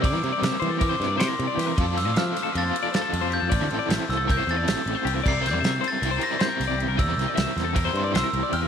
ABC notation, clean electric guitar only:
X:1
M:9/8
L:1/16
Q:3/8=104
K:F
V:1 name="Clean electric guitar"
d2 c d e2 c A B c2 d c B2 d G B | d2 c d e2 c A B c2 d c A2 c G A | d2 c d e2 c A B c2 d c A2 c G B | d2 c d e2 c A B c2 d c B2 d G B |
d2 c d e2 c A B c2 d c B2 d G B |]